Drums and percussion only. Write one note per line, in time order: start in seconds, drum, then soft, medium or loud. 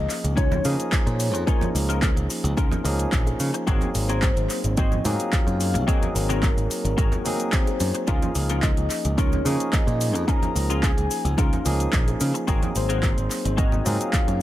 0.10 clap soft
0.10 open hi-hat medium
0.10 shaker medium
0.25 closed hi-hat medium
0.25 shaker soft
0.37 kick loud
0.37 closed hi-hat medium
0.37 shaker soft
0.52 low conga loud
0.52 shaker soft
0.65 open hi-hat loud
0.65 high conga medium
0.65 shaker medium
0.80 closed hi-hat medium
0.80 shaker soft
0.92 kick loud
0.92 clap loud
0.92 closed hi-hat medium
0.92 shaker soft
1.07 closed hi-hat soft
1.07 shaker soft
1.20 open hi-hat loud
1.20 shaker medium
1.35 closed hi-hat medium
1.35 shaker soft
1.47 kick loud
1.47 closed hi-hat medium
1.47 shaker soft
1.61 closed hi-hat soft
1.61 low conga loud
1.61 shaker soft
1.76 open hi-hat loud
1.76 shaker medium
1.90 closed hi-hat medium
1.90 shaker soft
2.02 kick loud
2.02 clap loud
2.02 closed hi-hat medium
2.02 shaker soft
2.17 closed hi-hat soft
2.17 shaker soft
2.30 open hi-hat loud
2.30 shaker medium
2.45 closed hi-hat soft
2.45 shaker soft
2.57 kick loud
2.57 closed hi-hat medium
2.57 high bongo soft
2.57 shaker soft
2.71 closed hi-hat soft
2.71 low conga loud
2.71 shaker soft
2.84 open hi-hat loud
2.84 high conga medium
2.84 shaker medium
2.99 closed hi-hat medium
2.99 shaker soft
3.12 kick loud
3.12 clap loud
3.12 closed hi-hat medium
3.12 shaker soft
3.27 closed hi-hat soft
3.27 high bongo soft
3.27 shaker soft
3.40 open hi-hat loud
3.40 shaker medium
3.54 closed hi-hat medium
3.54 shaker soft
3.67 kick loud
3.67 closed hi-hat medium
3.67 shaker soft
3.81 closed hi-hat soft
3.81 low conga medium
3.81 shaker soft
3.95 open hi-hat loud
3.95 shaker medium
4.08 closed hi-hat medium
4.08 high bongo soft
4.08 shaker soft
4.22 kick loud
4.22 clap loud
4.22 closed hi-hat medium
4.22 shaker soft
4.37 closed hi-hat soft
4.37 shaker soft
4.50 clap soft
4.50 open hi-hat loud
4.50 shaker medium
4.64 closed hi-hat soft
4.64 shaker soft
4.77 kick loud
4.77 closed hi-hat medium
4.77 shaker soft
4.92 low conga medium
4.92 shaker soft
5.05 open hi-hat loud
5.05 high conga medium
5.05 shaker medium
5.20 closed hi-hat medium
5.20 shaker soft
5.33 kick loud
5.33 clap loud
5.33 closed hi-hat medium
5.33 shaker soft
5.48 closed hi-hat soft
5.48 shaker soft
5.61 open hi-hat loud
5.61 shaker medium
5.75 closed hi-hat medium
5.75 shaker soft
5.88 kick loud
5.88 closed hi-hat medium
5.88 shaker soft
6.03 closed hi-hat soft
6.03 low conga medium
6.03 shaker soft
6.16 open hi-hat loud
6.16 shaker medium
6.29 closed hi-hat medium
6.29 high conga medium
6.29 shaker soft
6.43 kick loud
6.43 clap loud
6.43 closed hi-hat medium
6.43 shaker soft
6.58 closed hi-hat soft
6.58 shaker soft
6.71 open hi-hat loud
6.71 shaker medium
6.85 closed hi-hat soft
6.85 shaker soft
6.98 kick loud
6.98 closed hi-hat medium
6.98 high bongo soft
6.98 shaker soft
7.12 closed hi-hat soft
7.12 low conga medium
7.12 shaker soft
7.25 open hi-hat loud
7.25 high conga medium
7.25 shaker medium
7.40 closed hi-hat medium
7.40 shaker soft
7.52 kick loud
7.52 clap loud
7.52 closed hi-hat medium
7.52 shaker soft
7.67 closed hi-hat soft
7.67 high bongo soft
7.67 shaker soft
7.80 open hi-hat loud
7.80 shaker medium
7.95 closed hi-hat soft
7.95 shaker soft
8.08 kick loud
8.08 closed hi-hat medium
8.08 shaker soft
8.22 closed hi-hat soft
8.22 low conga medium
8.22 shaker soft
8.35 open hi-hat loud
8.35 shaker medium
8.49 closed hi-hat medium
8.49 high bongo soft
8.49 shaker soft
8.63 kick loud
8.63 clap loud
8.63 closed hi-hat medium
8.63 shaker soft
8.77 closed hi-hat soft
8.77 shaker soft
8.90 clap soft
8.90 open hi-hat loud
8.90 shaker medium
9.05 closed hi-hat soft
9.05 shaker soft
9.18 kick loud
9.18 closed hi-hat medium
9.18 shaker soft
9.33 low conga medium
9.33 shaker soft
9.46 open hi-hat loud
9.46 high conga medium
9.46 shaker medium
9.60 closed hi-hat medium
9.60 shaker soft
9.73 kick loud
9.73 clap loud
9.73 closed hi-hat medium
9.73 shaker soft
9.88 closed hi-hat soft
9.88 shaker soft
10.01 open hi-hat loud
10.01 shaker medium
10.15 closed hi-hat soft
10.15 shaker soft
10.28 kick loud
10.28 closed hi-hat medium
10.28 shaker soft
10.42 closed hi-hat soft
10.42 low conga medium
10.42 shaker soft
10.56 open hi-hat loud
10.56 shaker medium
10.70 closed hi-hat medium
10.70 shaker soft
10.83 kick loud
10.83 clap loud
10.83 closed hi-hat medium
10.83 shaker soft
10.98 closed hi-hat soft
10.98 shaker soft
11.11 open hi-hat loud
11.11 shaker medium
11.25 closed hi-hat soft
11.25 shaker soft
11.38 kick loud
11.38 closed hi-hat medium
11.38 high bongo medium
11.38 shaker soft
11.53 closed hi-hat soft
11.53 low conga medium
11.53 shaker soft
11.66 open hi-hat loud
11.66 high conga medium
11.66 shaker medium
11.80 closed hi-hat medium
11.80 shaker soft
11.93 kick loud
11.93 clap loud
11.93 closed hi-hat medium
11.93 shaker soft
12.08 closed hi-hat soft
12.08 high bongo soft
12.08 shaker soft
12.21 open hi-hat loud
12.21 shaker medium
12.35 closed hi-hat soft
12.35 shaker soft
12.48 kick loud
12.48 closed hi-hat medium
12.48 shaker soft
12.62 closed hi-hat soft
12.62 low conga medium
12.62 shaker soft
12.76 open hi-hat loud
12.76 shaker medium
12.90 closed hi-hat medium
12.90 high bongo soft
12.90 shaker soft
13.03 kick loud
13.03 clap loud
13.03 closed hi-hat medium
13.03 shaker soft
13.18 closed hi-hat soft
13.18 shaker soft
13.31 clap soft
13.31 open hi-hat loud
13.31 shaker medium
13.45 closed hi-hat medium
13.45 shaker soft
13.58 kick loud
13.58 closed hi-hat medium
13.58 shaker soft
13.72 low conga medium
13.72 shaker soft
13.86 open hi-hat loud
13.86 high conga medium
13.86 shaker medium
14.01 closed hi-hat medium
14.01 shaker soft
14.13 kick loud
14.13 clap loud
14.13 closed hi-hat medium
14.13 shaker soft
14.28 closed hi-hat soft
14.28 shaker soft